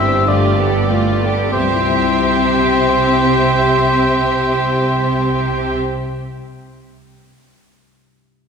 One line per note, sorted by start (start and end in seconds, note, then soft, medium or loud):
0.00 1.17 G1 medium
0.00 0.27 G2 soft
0.00 1.18 G2 medium
0.00 0.27 C4 soft
0.00 0.32 C4 soft
0.00 0.32 E4 soft
0.00 0.27 G4 soft
0.00 0.27 C5 soft
0.00 0.32 C5 soft
0.00 0.30 E5 medium
0.00 0.32 E5 soft
0.00 0.32 C6 soft
0.27 1.59 G2 soft
0.27 0.55 A3 soft
0.27 0.56 F4 soft
0.27 0.56 G4 soft
0.27 1.52 D5 medium
0.58 1.59 A3 soft
0.58 0.90 B3 soft
0.58 0.90 G4 soft
0.58 0.90 A4 soft
0.90 1.23 A3 soft
0.90 1.59 F4 soft
0.90 1.23 F4 soft
0.90 1.22 G4 soft
1.22 1.54 B3 soft
1.22 1.52 G4 soft
1.22 1.54 A4 soft
1.22 1.59 B4 soft
1.53 5.75 C2 soft
1.53 5.76 C3 soft
1.53 5.77 C3 soft
1.53 5.77 C4 soft
1.53 5.75 G4 soft
1.53 5.75 C5 medium
1.53 5.77 E5 soft
1.61 5.83 G3 soft
1.68 5.90 C4 soft
1.75 5.97 E4 soft
1.82 6.04 C5 soft
1.89 6.10 E5 soft